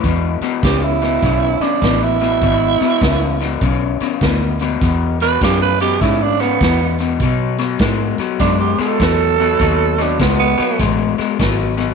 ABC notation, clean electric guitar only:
X:1
M:4/4
L:1/8
Q:"Swing" 1/4=100
K:Emix
V:1 name="Clean electric guitar" clef=bass
[E,,B,,] [E,,B,,] [E,,C,] [E,,B,,] [E,,C,] [E,,C,] [E,,B,,] [E,,B,,] | [E,,B,,] [E,,B,,] [E,,C,] [E,,B,,] [E,,C,] [E,,C,] [E,,B,,] [E,,B,,] | [E,,B,,] [E,,B,,] [E,,C,] [E,,B,,] [E,,C,] [E,,C,] [E,,B,,] [E,,B,,] | [B,,F,] [B,,F,] [B,,G,] [B,,F,] [B,,G,] [B,,G,] [B,,F,] [B,,F,] |
[B,,F,] [B,,F,] [B,,G,] [B,,F,] [B,,G,] [B,,G,] [B,,F,] [B,,F,] |]